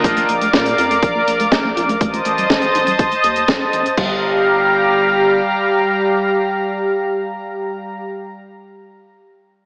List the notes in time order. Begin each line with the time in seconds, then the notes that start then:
Already playing: A#3 D4 F4 A#4
0.04 A#1 A#3 A#4 D5 F5 D6, kick, closed hi-hat
0.17 A#3, closed hi-hat
0.29 A#1 A#3, closed hi-hat
0.41 A3, closed hi-hat
0.53 A#2 A#3, kick, snare, closed hi-hat
0.66 A#3, closed hi-hat
0.78 F2 F4, closed hi-hat
0.91 A3, closed hi-hat
1.02 A#1 A#4, kick, closed hi-hat
1.15 A#3
1.27 A#1 A#3, closed hi-hat
1.40 A3, closed hi-hat
1.52 A#1 A#3, kick, snare, closed hi-hat
1.64 A#3
1.77 A#1 F4, closed hi-hat
1.89 A3, closed hi-hat
2.01 A1 A3 C5 D#5 A5 D#6, kick, closed hi-hat
2.13 A3, closed hi-hat
2.25 A1 A3, closed hi-hat
2.38 G3, closed hi-hat
2.50 A1 A3, kick, snare, closed hi-hat
2.62 A3, closed hi-hat
2.75 A1 D#4, closed hi-hat
2.87 G3, closed hi-hat
2.99 A1 A4, kick, closed hi-hat
3.12 A3, closed hi-hat
3.24 D#2 A4, closed hi-hat
3.36 A3, closed hi-hat
3.48 A1, kick, snare, closed hi-hat
3.61 A3
3.73 A1 A3, closed hi-hat
3.85 A2, closed hi-hat
3.97 G1 G3 G4 F5 A#5, kick, crash